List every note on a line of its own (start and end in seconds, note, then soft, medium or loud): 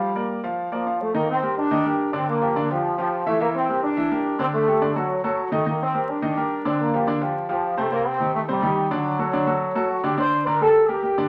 0.00 0.10 F3 medium
0.00 0.40 G3 medium
0.00 0.10 F4 medium
0.00 0.11 F5 medium
0.15 0.39 A#3 medium
0.15 0.39 A#4 medium
0.15 0.39 D5 medium
0.44 0.67 F3 medium
0.44 0.67 F4 medium
0.44 0.67 F5 medium
0.72 0.98 F3 medium
0.72 0.83 A#3 medium
0.72 0.84 A#4 medium
0.72 0.84 D5 medium
0.86 1.09 F3 medium
0.86 1.10 F4 medium
0.86 1.10 F5 medium
1.01 1.15 A3 medium
1.14 1.37 D#3 medium
1.14 1.28 A#3 medium
1.14 1.38 D#4 medium
1.14 1.38 D#5 medium
1.29 1.55 C4 loud
1.42 1.66 G3 medium
1.42 1.66 G4 medium
1.42 1.66 A#4 medium
1.57 2.10 D4 loud
1.71 1.82 D#3 medium
1.71 1.83 D#4 medium
1.71 1.83 D#5 medium
1.85 2.08 G3 medium
1.85 2.08 G4 medium
1.85 2.08 A#4 medium
2.13 2.36 D3 medium
2.13 2.28 C4 loud
2.13 2.36 D4 medium
2.13 2.36 D5 medium
2.28 2.67 A#3 loud
2.42 2.53 F3 medium
2.42 2.53 F4 medium
2.42 2.53 G4 medium
2.56 2.67 D3 medium
2.56 2.67 D4 medium
2.56 2.68 D5 medium
2.70 2.96 F3 medium
2.70 2.93 F3 medium
2.70 2.93 F4 medium
2.70 2.94 G4 medium
2.98 3.24 F3 medium
2.98 3.21 F3 medium
2.98 3.21 F4 medium
2.98 3.22 G4 medium
3.26 3.38 E3 medium
3.26 3.39 A3 loud
3.26 3.38 E4 medium
3.26 3.38 E5 medium
3.40 3.63 E3 medium
3.40 3.47 A#3 loud
3.40 3.64 E4 medium
3.40 3.64 E5 medium
3.55 3.81 C4 loud
3.69 3.92 G3 medium
3.69 3.92 G4 medium
3.69 3.92 A#4 medium
3.83 4.35 D4 loud
3.97 4.08 E3 medium
3.97 4.09 E4 medium
3.97 4.09 E5 medium
4.11 4.34 G3 medium
4.11 4.34 G4 medium
4.11 4.34 A#4 medium
4.39 4.62 D3 medium
4.39 4.46 C4 loud
4.39 4.62 D4 medium
4.39 4.63 D5 medium
4.53 4.93 A3 loud
4.67 4.79 G3 medium
4.67 4.79 G4 medium
4.67 4.79 A4 medium
4.82 4.93 D3 medium
4.82 4.93 D4 medium
4.82 4.93 D5 medium
4.95 5.19 F#3 medium
4.95 5.23 F#3 medium
4.95 5.19 F#4 medium
4.95 5.19 A4 medium
5.24 5.47 F#3 medium
5.24 5.50 F#3 medium
5.24 5.47 F#4 medium
5.24 5.47 A4 medium
5.52 5.63 D#3 medium
5.52 5.65 A3 medium
5.52 5.64 D#4 medium
5.52 5.64 D#5 medium
5.66 5.89 D#3 medium
5.66 5.81 A#3 medium
5.66 5.89 D#4 medium
5.66 5.89 D#5 medium
5.82 6.07 C4 loud
5.94 6.17 G3 medium
5.94 6.18 G4 medium
5.94 6.18 A#4 medium
6.09 6.65 D4 loud
6.22 6.34 D#3 medium
6.22 6.34 D#4 medium
6.22 6.34 D#5 medium
6.37 6.60 G3 medium
6.37 6.60 G4 medium
6.37 6.60 A#4 medium
6.65 6.88 D3 medium
6.65 6.79 C4 medium
6.65 6.88 D4 medium
6.65 6.89 D5 medium
6.80 7.19 A#3 medium
6.93 7.05 F3 medium
6.93 7.05 F4 medium
6.93 7.05 G4 medium
7.07 7.19 D3 medium
7.07 7.19 D4 medium
7.07 7.19 D5 medium
7.21 7.44 F3 medium
7.21 7.45 F4 medium
7.21 7.45 G4 medium
7.49 7.72 F3 medium
7.49 7.76 F3 medium
7.49 7.73 F4 medium
7.49 7.73 G4 medium
7.77 7.89 C3 medium
7.77 7.84 A3 medium
7.77 7.89 C4 medium
7.77 7.90 C5 medium
7.92 8.15 C3 medium
7.92 8.05 A#3 loud
7.92 8.15 C4 medium
7.92 8.15 C5 medium
8.06 8.34 C4 loud
8.20 8.43 D#3 medium
8.20 8.44 D#4 medium
8.20 8.44 G4 medium
8.34 8.41 A3 loud
8.48 8.60 C3 medium
8.48 8.88 G3 loud
8.48 8.60 C4 medium
8.48 8.60 C5 medium
8.62 8.86 D#3 medium
8.62 8.86 D#4 medium
8.62 8.86 G4 medium
8.91 9.14 D3 medium
8.91 9.90 F#3 loud
8.91 9.14 D4 medium
8.91 9.14 D5 medium
9.19 9.31 F#3 medium
9.19 9.31 F#4 medium
9.19 9.31 A4 medium
9.33 9.45 D3 medium
9.33 9.45 D4 medium
9.33 9.45 D5 medium
9.47 9.70 F#3 medium
9.47 9.70 F#4 medium
9.47 9.70 A4 medium
9.75 9.99 F#3 medium
9.75 9.99 F#4 medium
9.75 9.99 A4 medium
9.91 10.03 F#4 medium
10.04 10.15 D3 medium
10.04 10.15 D4 medium
10.04 10.18 G4 medium
10.04 10.16 D5 medium
10.17 10.41 D3 medium
10.17 10.41 D4 medium
10.17 10.44 C5 loud
10.17 10.41 D5 medium
10.46 10.58 D3 medium
10.46 10.58 D4 medium
10.46 10.60 A#4 loud
10.46 10.58 D5 medium
10.60 10.84 G3 medium
10.60 10.84 G4 medium
10.60 10.87 A4 loud
10.60 10.84 A#4 medium
10.88 11.00 G3 medium
10.88 11.28 G4 loud
10.88 11.00 G4 medium
10.88 11.01 A#4 medium
11.03 11.14 G3 medium
11.03 11.15 G4 medium
11.03 11.15 A#4 medium
11.18 11.28 D3 medium
11.18 11.28 D4 medium
11.18 11.28 D5 medium